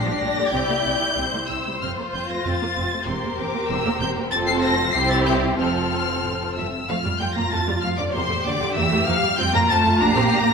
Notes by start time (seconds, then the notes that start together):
Already playing: D4 G4 D5
0.04 A#2 F3 A#6
0.12 C7
0.19 A#1 A#2 G3 A#6
0.37 A#2 D3
0.52 C2 C3 C4 E4 G6
0.69 C3 A#3
0.85 C2 C3 C4
1.00 C3 G3
1.17 C2 C3 C4 C5
1.33 C3 A#3
1.49 C2 C3 C4 E6
1.66 C3 G3
1.81 F1 F2 C4 F4 F6
1.98 F2 A#3
2.13 F1 F2 C4 G6
2.30 F2 A3 A#6
2.45 F1 F2 C4 A6
2.61 F2 A#3
2.77 F1 F2 C4
2.92 F2 A3
3.08 E1 E2 C4 G4 A#4 C5 C6
3.24 E2 A#3
3.39 E1 E2 C4 D6
3.54 E2 A#3
3.70 E1 E2 C4 E6
3.85 E2 A#3
4.01 E1 E2 C4 G6
4.16 E2 A#3
4.32 F1 F2 C4 F4 A4 C5 A6
4.48 C7
4.63 A#6
4.94 C2 C4 E4 G4 C5 C7
5.10 A6
5.26 G6
5.58 F1 F2 C4 F4 A4 C5 F6
6.24 A2
6.55 G2 E3 E5 E6
6.87 F2 F3 A3 F4 F5 F6
7.04 F2 G3
7.18 F2 G3 A3 G5 G6
7.35 F2 F3 A#3 A#5 A#6
7.50 F2 A3 A5 A6
7.67 F2 G3
7.81 F2 F3 A3 F5 F6
7.97 F2 D3 F3 D5 D6
8.12 E2 C3 A#3 G4 C5 C6
8.29 E2 A3
8.44 E2 D3 A#3 D5 D6
8.60 E2 G3
8.75 E2 E3 A#3 E5 E6
8.91 E2 A3
9.06 E2 F3 A#3 F5 F6
9.22 E2 G3
9.37 F2 G3 C4 F4 G5 G6
9.53 F2 A#3 A#5 A#6
9.69 F2 A3 C4 A5 A6
9.84 F2 A3
10.00 A#1 A#3 D4 G4 A#5 A#6
10.09 C7
10.16 A#1 C4 A#6
10.25 C7
10.32 A#1 D4 A#6
10.48 A#1 A#3